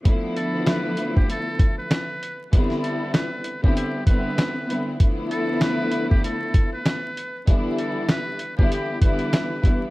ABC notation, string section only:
X:1
M:4/4
L:1/16
Q:"Swing 16ths" 1/4=97
K:Ddor
V:1 name="String section"
[D,F,A,B,E]12- [D,F,A,B,E] z3 | [D,G,B,CE]6 z [D,G,B,CE]3 [D,G,B,CE]4 [D,G,B,CE]2 | [D,F,A,B,E]12- [D,F,A,B,E] z3 | [D,E,G,B,E]6 z [D,E,G,B,E]3 [D,E,G,B,E]4 [D,E,G,B,E]2 |]